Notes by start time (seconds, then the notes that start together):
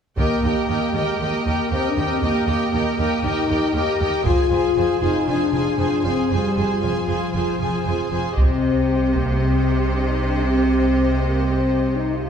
0.17 D#2 A#3 G4 A#4 D#5 G5, taiko
0.43 D#2 G4 A#4 D#5 G5
0.68 D#2 G4 A#4 D#5 G5
0.94 D#2 G#3 G4 A#4 D#5 G5
1.20 D#2 A#3 G4 A#4 D#5 G5
1.46 D#2 G4 A#4 D#5 G5
1.71 D#2 C4 G4 A#4 D#5 G5
1.89 D4
1.97 D#2 G4 A#4 D#5 G5
2.05 C4
2.22 D#2 A#3 G4 A#4 D#5 G5
2.47 D#2 G4 A#4 D#5 G5
2.72 D#2 G4 A#4 D#5 G5
2.98 D#2 G4 A#4 D#5 G5
3.23 D#2 D#4 G4 A#4 D#5 G5
3.49 D#2 G4 A#4 D#5 G5
3.74 D#2 G4 A#4 D#5 G5
4.00 D#2 G4 A#4 D#5 G5
4.24 F1 F2 F4 G#4 C5 G#5, taiko
4.50 F1 F2 F4 G#4 C5 G#5
4.76 F1 F2 F4 G#4 C5 G#5
5.01 F1 F2 D#4 F4 G#4 C5 G#5
5.27 F1 F2 D4 F4 G#4 C5 G#5
5.52 F1 F2 F4 G#4 C5 G#5
5.78 F1 F2 F4 G#4 C5 G#5
6.03 F1 F2 C4 F4 G#4 C5 G#5
6.30 F1 F2 G3 F4 G#4 C5 G#5
6.55 F1 F2 F4 G#4 C5 G#5
6.81 F1 F2 F3 F4 G#4 C5 G#5
7.07 F1 F2 F4 G#4 C5 G#5
7.33 F1 F2 F4 G#4 C5 G#5
7.59 F1 F2 F4 G#4 C5 G#5
7.84 F1 F2 F4 G#4 C5 G#5
8.11 F1 F2 F4 G#4 C5 G#5
8.36 C2 C3 C4 G4 C5 D#5, taiko
9.15 A#3, taiko
9.38 C4
9.92 D4
10.09 D#4
10.25 D4
10.43 C4
11.20 A#3
11.45 C4
11.96 D#4
12.14 F4